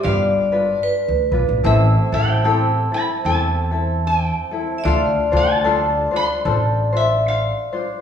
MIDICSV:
0, 0, Header, 1, 5, 480
1, 0, Start_track
1, 0, Tempo, 799893
1, 988, Time_signature, 4, 2, 24, 8
1, 4808, End_track
2, 0, Start_track
2, 0, Title_t, "Resonator guitar played with a steel bar"
2, 0, Program_c, 0, 25
2, 25, Note_on_c, 0, 77, 81
2, 483, Note_off_c, 0, 77, 0
2, 997, Note_on_c, 0, 76, 80
2, 1280, Note_off_c, 0, 76, 0
2, 1283, Note_on_c, 0, 79, 87
2, 1735, Note_off_c, 0, 79, 0
2, 1765, Note_on_c, 0, 83, 99
2, 1816, Note_off_c, 0, 83, 0
2, 1955, Note_on_c, 0, 81, 98
2, 2439, Note_off_c, 0, 81, 0
2, 2442, Note_on_c, 0, 79, 86
2, 2794, Note_off_c, 0, 79, 0
2, 2925, Note_on_c, 0, 77, 86
2, 3212, Note_off_c, 0, 77, 0
2, 3220, Note_on_c, 0, 81, 97
2, 3695, Note_off_c, 0, 81, 0
2, 3697, Note_on_c, 0, 84, 108
2, 4180, Note_off_c, 0, 84, 0
2, 4180, Note_on_c, 0, 76, 90
2, 4366, Note_off_c, 0, 76, 0
2, 4370, Note_on_c, 0, 77, 86
2, 4718, Note_off_c, 0, 77, 0
2, 4808, End_track
3, 0, Start_track
3, 0, Title_t, "Vibraphone"
3, 0, Program_c, 1, 11
3, 22, Note_on_c, 1, 74, 95
3, 500, Note_on_c, 1, 71, 95
3, 519, Note_off_c, 1, 74, 0
3, 988, Note_on_c, 1, 72, 96
3, 998, Note_off_c, 1, 71, 0
3, 2870, Note_on_c, 1, 76, 73
3, 2902, Note_on_c, 1, 74, 97
3, 2906, Note_off_c, 1, 76, 0
3, 2931, Note_off_c, 1, 72, 0
3, 4808, Note_off_c, 1, 74, 0
3, 4808, End_track
4, 0, Start_track
4, 0, Title_t, "Ukulele"
4, 0, Program_c, 2, 24
4, 19, Note_on_c, 2, 67, 56
4, 23, Note_on_c, 2, 62, 58
4, 28, Note_on_c, 2, 65, 67
4, 32, Note_on_c, 2, 71, 63
4, 305, Note_off_c, 2, 71, 0
4, 310, Note_off_c, 2, 67, 0
4, 312, Note_off_c, 2, 62, 0
4, 312, Note_off_c, 2, 65, 0
4, 313, Note_on_c, 2, 71, 54
4, 319, Note_on_c, 2, 65, 49
4, 324, Note_on_c, 2, 62, 42
4, 782, Note_off_c, 2, 71, 0
4, 789, Note_on_c, 2, 71, 58
4, 791, Note_off_c, 2, 65, 0
4, 798, Note_off_c, 2, 62, 0
4, 798, Note_on_c, 2, 65, 58
4, 805, Note_on_c, 2, 62, 49
4, 981, Note_on_c, 2, 67, 71
4, 983, Note_off_c, 2, 62, 0
4, 985, Note_off_c, 2, 71, 0
4, 985, Note_on_c, 2, 60, 76
4, 988, Note_off_c, 2, 65, 0
4, 989, Note_on_c, 2, 69, 87
4, 990, Note_on_c, 2, 64, 88
4, 1267, Note_off_c, 2, 69, 0
4, 1271, Note_off_c, 2, 64, 0
4, 1271, Note_off_c, 2, 67, 0
4, 1273, Note_off_c, 2, 60, 0
4, 1274, Note_on_c, 2, 69, 65
4, 1279, Note_on_c, 2, 64, 65
4, 1280, Note_on_c, 2, 60, 62
4, 1281, Note_on_c, 2, 67, 53
4, 1458, Note_off_c, 2, 67, 0
4, 1461, Note_off_c, 2, 60, 0
4, 1463, Note_off_c, 2, 64, 0
4, 1463, Note_off_c, 2, 69, 0
4, 1465, Note_on_c, 2, 67, 83
4, 1468, Note_on_c, 2, 60, 81
4, 1470, Note_on_c, 2, 64, 87
4, 1470, Note_on_c, 2, 69, 98
4, 1744, Note_off_c, 2, 69, 0
4, 1750, Note_off_c, 2, 64, 0
4, 1751, Note_on_c, 2, 69, 53
4, 1753, Note_off_c, 2, 67, 0
4, 1755, Note_off_c, 2, 60, 0
4, 1758, Note_on_c, 2, 64, 48
4, 1761, Note_on_c, 2, 60, 42
4, 1943, Note_off_c, 2, 60, 0
4, 1945, Note_off_c, 2, 64, 0
4, 1946, Note_off_c, 2, 69, 0
4, 1947, Note_on_c, 2, 67, 59
4, 1950, Note_on_c, 2, 60, 55
4, 1952, Note_on_c, 2, 64, 61
4, 1955, Note_on_c, 2, 69, 63
4, 2221, Note_off_c, 2, 69, 0
4, 2225, Note_off_c, 2, 64, 0
4, 2228, Note_on_c, 2, 69, 49
4, 2232, Note_off_c, 2, 60, 0
4, 2232, Note_on_c, 2, 64, 50
4, 2234, Note_off_c, 2, 67, 0
4, 2239, Note_on_c, 2, 60, 42
4, 2706, Note_off_c, 2, 69, 0
4, 2706, Note_on_c, 2, 69, 54
4, 2708, Note_off_c, 2, 64, 0
4, 2715, Note_on_c, 2, 64, 52
4, 2718, Note_off_c, 2, 60, 0
4, 2720, Note_on_c, 2, 60, 41
4, 2901, Note_off_c, 2, 69, 0
4, 2907, Note_off_c, 2, 60, 0
4, 2908, Note_off_c, 2, 64, 0
4, 2908, Note_on_c, 2, 69, 79
4, 2909, Note_on_c, 2, 62, 83
4, 2910, Note_on_c, 2, 65, 91
4, 2914, Note_on_c, 2, 72, 89
4, 3183, Note_off_c, 2, 72, 0
4, 3186, Note_off_c, 2, 65, 0
4, 3190, Note_off_c, 2, 69, 0
4, 3191, Note_off_c, 2, 62, 0
4, 3191, Note_on_c, 2, 72, 66
4, 3193, Note_on_c, 2, 65, 71
4, 3197, Note_on_c, 2, 69, 55
4, 3198, Note_on_c, 2, 62, 64
4, 3379, Note_off_c, 2, 69, 0
4, 3383, Note_off_c, 2, 62, 0
4, 3386, Note_off_c, 2, 72, 0
4, 3386, Note_on_c, 2, 69, 81
4, 3388, Note_off_c, 2, 65, 0
4, 3390, Note_on_c, 2, 62, 93
4, 3394, Note_on_c, 2, 65, 89
4, 3394, Note_on_c, 2, 72, 94
4, 3661, Note_off_c, 2, 72, 0
4, 3668, Note_on_c, 2, 72, 57
4, 3670, Note_off_c, 2, 65, 0
4, 3673, Note_off_c, 2, 62, 0
4, 3674, Note_off_c, 2, 69, 0
4, 3677, Note_on_c, 2, 65, 48
4, 3680, Note_on_c, 2, 62, 49
4, 3865, Note_off_c, 2, 62, 0
4, 3865, Note_off_c, 2, 72, 0
4, 3869, Note_off_c, 2, 65, 0
4, 3871, Note_on_c, 2, 69, 61
4, 3872, Note_on_c, 2, 62, 61
4, 3876, Note_on_c, 2, 65, 63
4, 3882, Note_on_c, 2, 72, 70
4, 4148, Note_off_c, 2, 72, 0
4, 4155, Note_off_c, 2, 65, 0
4, 4156, Note_off_c, 2, 69, 0
4, 4156, Note_on_c, 2, 72, 53
4, 4157, Note_off_c, 2, 62, 0
4, 4162, Note_on_c, 2, 65, 49
4, 4167, Note_on_c, 2, 62, 41
4, 4629, Note_off_c, 2, 72, 0
4, 4636, Note_on_c, 2, 72, 55
4, 4637, Note_off_c, 2, 65, 0
4, 4639, Note_on_c, 2, 65, 53
4, 4643, Note_off_c, 2, 62, 0
4, 4645, Note_on_c, 2, 62, 48
4, 4808, Note_off_c, 2, 62, 0
4, 4808, Note_off_c, 2, 65, 0
4, 4808, Note_off_c, 2, 72, 0
4, 4808, End_track
5, 0, Start_track
5, 0, Title_t, "Upright bass"
5, 0, Program_c, 3, 32
5, 27, Note_on_c, 3, 31, 92
5, 432, Note_off_c, 3, 31, 0
5, 650, Note_on_c, 3, 38, 76
5, 780, Note_off_c, 3, 38, 0
5, 790, Note_on_c, 3, 35, 81
5, 879, Note_off_c, 3, 35, 0
5, 892, Note_on_c, 3, 33, 78
5, 979, Note_off_c, 3, 33, 0
5, 986, Note_on_c, 3, 33, 105
5, 1173, Note_off_c, 3, 33, 0
5, 1274, Note_on_c, 3, 33, 84
5, 1712, Note_off_c, 3, 33, 0
5, 1950, Note_on_c, 3, 40, 86
5, 2574, Note_off_c, 3, 40, 0
5, 2911, Note_on_c, 3, 38, 104
5, 3096, Note_off_c, 3, 38, 0
5, 3196, Note_on_c, 3, 38, 87
5, 3634, Note_off_c, 3, 38, 0
5, 3872, Note_on_c, 3, 33, 85
5, 4494, Note_off_c, 3, 33, 0
5, 4808, End_track
0, 0, End_of_file